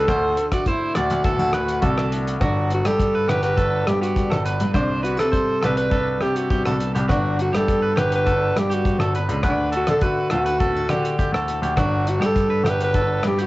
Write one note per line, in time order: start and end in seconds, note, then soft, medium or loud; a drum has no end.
0.00 0.67 D4 medium
0.00 0.48 A4 loud
0.07 0.34 D2 medium
0.07 2.98 D3 medium
0.07 0.36 C5 medium
0.07 kick medium
0.07 cross-stick medium
0.07 closed hi-hat soft
0.37 closed hi-hat medium
0.52 0.69 F#4 medium
0.52 0.66 D5 medium
0.52 kick medium
0.52 cross-stick medium
0.52 closed hi-hat medium
0.66 1.81 A3 medium
0.66 1.23 D4 medium
0.66 0.96 E4 medium
0.66 0.95 C5 medium
0.66 kick medium
0.66 closed hi-hat soft
0.95 1.09 D2 medium
0.95 2.09 F#4 medium
0.95 1.23 D5 medium
0.95 cross-stick medium
0.95 closed hi-hat medium
1.10 1.37 D2 medium
1.10 closed hi-hat soft
1.24 2.42 A2 medium
1.24 1.39 B3 medium
1.24 1.53 A4 medium
1.24 kick medium
1.24 closed hi-hat soft
1.39 1.83 D2 medium
1.39 1.53 D4 medium
1.53 2.38 D4 medium
1.53 1.82 B4 medium
1.53 cross-stick medium
1.53 closed hi-hat soft
1.68 closed hi-hat soft
1.82 2.34 C2 medium
1.82 2.38 A3 medium
1.82 2.11 A4 medium
1.82 kick medium
1.82 closed hi-hat soft
1.98 cross-stick medium
2.12 2.38 F#4 medium
2.12 closed hi-hat soft
2.27 closed hi-hat medium
2.41 2.80 G1 medium
2.41 3.56 G2 medium
2.41 2.70 D4 medium
2.41 2.69 F#4 medium
2.41 kick medium
2.41 cross-stick medium
2.41 closed hi-hat soft
2.70 2.85 B3 medium
2.70 2.88 F#4 medium
2.70 closed hi-hat soft
2.85 3.24 G2 medium
2.85 3.56 D4 soft
2.85 3.14 G4 medium
2.85 3.30 A4 medium
2.85 cross-stick medium
2.85 closed hi-hat soft
3.00 4.14 D3 medium
3.00 kick medium
3.00 closed hi-hat soft
3.15 3.29 B4 medium
3.28 3.81 G1 medium
3.28 3.42 E4 medium
3.28 3.56 G4 medium
3.28 3.42 B4 medium
3.28 cross-stick medium
3.28 closed hi-hat medium
3.42 4.75 F#4 medium
3.42 3.88 B4 medium
3.42 closed hi-hat soft
3.57 4.71 G2 medium
3.57 4.16 D4 soft
3.57 3.86 A4 medium
3.57 kick medium
3.57 closed hi-hat soft
3.86 4.27 G2 medium
3.86 4.72 B3 medium
3.86 4.01 G4 medium
3.86 cross-stick medium
3.86 closed hi-hat soft
4.01 4.43 F#4 medium
4.01 4.30 G4 medium
4.01 closed hi-hat soft
4.15 5.31 D3 medium
4.15 4.44 D4 medium
4.15 kick medium
4.15 closed hi-hat soft
4.30 4.58 G1 medium
4.30 4.45 A4 medium
4.30 cross-stick medium
4.45 4.77 D4 medium
4.45 4.74 B4 medium
4.45 closed hi-hat soft
4.60 4.74 G2 medium
4.60 closed hi-hat soft
4.74 5.14 C2 medium
4.74 5.92 C3 medium
4.74 5.06 D4 medium
4.74 5.03 C5 medium
4.74 kick medium
4.74 cross-stick medium
4.74 closed hi-hat soft
5.02 5.17 B3 medium
5.02 5.19 F#4 medium
5.02 5.32 B4 medium
5.02 closed hi-hat soft
5.17 5.58 C3 medium
5.17 5.61 D4 medium
5.17 5.60 A4 medium
5.17 cross-stick medium
5.17 closed hi-hat soft
5.32 6.50 G3 medium
5.32 5.61 C5 medium
5.32 kick medium
5.32 closed hi-hat soft
5.62 6.16 C2 medium
5.62 5.91 D4 medium
5.62 5.77 A4 medium
5.62 5.77 B4 medium
5.62 cross-stick medium
5.62 closed hi-hat soft
5.77 5.91 B4 medium
5.77 6.24 B4 medium
5.77 closed hi-hat soft
5.90 7.05 G2 medium
5.90 6.51 D4 medium
5.90 6.20 A4 medium
5.90 kick medium
5.90 closed hi-hat soft
6.21 6.61 C3 medium
6.21 7.07 C4 medium
6.21 6.49 G4 medium
6.21 6.38 G4 medium
6.21 cross-stick medium
6.21 closed hi-hat soft
6.36 6.80 F#4 medium
6.36 closed hi-hat soft
6.50 7.06 G3 medium
6.50 6.66 B3 medium
6.50 6.65 G4 medium
6.50 kick medium
6.50 closed hi-hat soft
6.66 6.92 C2 medium
6.66 6.79 D4 medium
6.66 6.94 A4 medium
6.66 cross-stick medium
6.80 6.95 B3 medium
6.80 closed hi-hat soft
6.95 7.08 C2 medium
6.95 7.08 G4 medium
6.95 muted steel-string acoustic guitar stroke medium
6.95 closed hi-hat soft
7.08 7.48 G1 medium
7.08 9.40 G2 medium
7.08 7.66 D3 medium
7.08 8.55 B3 soft
7.08 7.38 D4 medium
7.08 7.40 D4 medium
7.08 7.37 F#4 medium
7.08 kick medium
7.08 cross-stick medium
7.08 closed hi-hat soft
7.13 7.97 F#4 medium
7.39 8.26 D4 medium
7.39 7.57 F#4 medium
7.39 closed hi-hat soft
7.53 7.92 G2 medium
7.53 7.81 G4 medium
7.53 8.00 A4 medium
7.53 cross-stick medium
7.53 closed hi-hat soft
7.67 8.25 D3 medium
7.67 kick medium
7.67 closed hi-hat soft
7.82 7.95 B4 medium
7.96 8.49 G1 medium
7.96 11.18 F#4 medium
7.96 8.24 G4 medium
7.96 8.13 B4 loud
7.96 cross-stick medium
7.96 closed hi-hat soft
8.12 8.60 B4 loud
8.12 closed hi-hat soft
8.26 8.84 D3 medium
8.26 8.86 D4 medium
8.26 8.54 A4 medium
8.26 kick medium
8.26 closed hi-hat soft
8.56 8.95 G2 medium
8.56 9.40 B3 medium
8.56 8.76 G4 medium
8.56 cross-stick medium
8.56 closed hi-hat soft
8.70 8.98 G4 medium
8.70 closed hi-hat soft
8.74 9.16 F#4 medium
8.85 9.43 D3 medium
8.85 9.16 D4 medium
8.85 kick medium
8.85 closed hi-hat soft
8.98 9.25 G1 medium
8.98 9.14 A4 medium
8.98 cross-stick medium
9.14 9.75 D4 medium
9.14 9.42 B4 medium
9.14 closed hi-hat medium
9.28 9.42 C#2 medium
9.28 closed hi-hat soft
9.43 9.82 D2 medium
9.43 12.35 D3 medium
9.43 9.72 B4 medium
9.43 kick medium
9.43 cross-stick medium
9.43 closed hi-hat soft
9.49 9.74 D4 medium
9.72 10.30 D4 medium
9.72 10.00 A4 medium
9.72 closed hi-hat soft
9.76 9.89 F#4 loud
9.87 10.27 D3 medium
9.87 10.04 A4 medium
9.87 cross-stick medium
9.87 closed hi-hat soft
10.01 11.17 A3 medium
10.01 10.32 F#4 medium
10.01 10.30 B4 medium
10.01 kick medium
10.01 closed hi-hat soft
10.30 10.84 D2 medium
10.30 10.48 B3 medium
10.30 11.16 F#4 medium
10.30 10.45 A4 medium
10.30 cross-stick medium
10.30 closed hi-hat soft
10.46 10.61 D4 soft
10.46 10.60 B4 medium
10.46 closed hi-hat soft
10.60 11.78 A2 medium
10.60 10.76 B3 medium
10.60 10.88 A4 medium
10.60 kick medium
10.60 closed hi-hat soft
10.76 10.90 D4 soft
10.89 11.29 D3 medium
10.89 12.04 D4 medium
10.89 11.18 G4 medium
10.89 cross-stick medium
10.89 closed hi-hat soft
11.05 closed hi-hat soft
11.18 11.74 A3 medium
11.18 11.47 F#4 medium
11.18 11.33 G4 medium
11.18 kick medium
11.18 closed hi-hat soft
11.32 11.59 D2 medium
11.32 11.62 A4 medium
11.32 cross-stick medium
11.48 11.74 F#4 medium
11.48 closed hi-hat soft
11.62 11.76 D2 medium
11.62 11.77 G4 medium
11.62 closed hi-hat soft
11.76 12.17 G1 loud
11.76 12.93 G2 medium
11.76 12.11 D4 medium
11.76 12.05 F#4 medium
11.76 kick medium
11.76 cross-stick medium
11.76 closed hi-hat soft
12.05 12.22 B3 medium
12.05 closed hi-hat soft
12.09 12.27 F#4 medium
12.20 12.60 G2 medium
12.20 12.94 D4 soft
12.20 12.49 G4 medium
12.20 cross-stick medium
12.20 closed hi-hat soft
12.26 12.71 A4 medium
12.36 13.47 D3 medium
12.36 kick medium
12.36 closed hi-hat soft
12.50 12.65 B4 medium
12.64 13.16 G1 medium
12.64 12.80 E4 medium
12.64 12.93 G4 medium
12.64 cross-stick medium
12.64 closed hi-hat soft
12.69 12.83 B4 medium
12.80 13.47 F#4 soft
12.80 13.23 B4 medium
12.80 closed hi-hat soft
12.94 13.47 G2 medium
12.94 13.47 D4 medium
12.94 13.23 A4 medium
12.94 kick medium
12.94 closed hi-hat soft
13.23 13.47 G2 medium
13.23 13.47 B3 medium
13.23 cross-stick medium
13.23 closed hi-hat soft
13.27 13.40 G4 medium
13.38 13.47 F#4 medium
13.38 13.47 G4 medium
13.38 closed hi-hat soft